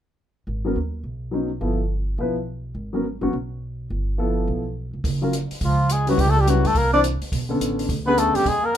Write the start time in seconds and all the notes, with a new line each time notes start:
0.47 G#1
0.65 F#3 B3 C#4 A#4
0.76 D#2
1.04 B1
1.31 F#3 B3 C#4 D#4
1.61 G1 F3 B3 E4 A4
2.18 B1 F3 B3 E4 B4
2.75 G#1
2.93 F#3 B3 C#4 A#4
3.21 A1 F#3 B3 C#4 F#4
3.33 B1
3.90 G1
4.18 F3 B3 E4 A4
4.48 B1
4.93 F1
5.04 F#1, kick, open hi-hat
5.22 F#3 C#4 F4 A#4
5.33 closed hi-hat
5.51 muted upright bass stroke, open hi-hat
5.61 C#2 F3 F4, kick, open hi-hat
5.90 G#3 G#4, closed hi-hat
6.07 F#3 G3 C#4 E4 F#4 B4, open hi-hat
6.18 C#2 G3 G4, kick, open hi-hat
6.27 A3 A4
6.37 G3 G4
6.45 F#3 G3 C#4 E4 B4, closed hi-hat
6.50 F#4
6.64 G2 A3 A4, open hi-hat
6.75 C2 A#3 A#4, kick, open hi-hat
6.92 E3 C4 D4 C5 D5
7.04 closed hi-hat
7.22 muted upright bass stroke, open hi-hat
7.32 B1, kick, open hi-hat
7.49 D3 B3 C#4 A4
7.60 A1, closed hi-hat
7.79 open hi-hat
7.89 D2, kick, open hi-hat
8.06 D3 B3 C#4 G#4 B4
8.18 A3 A4, closed hi-hat
8.35 F#2 G3 G4, open hi-hat
8.46 F2 G#3 G#4, kick, open hi-hat
8.63 A#3 A#4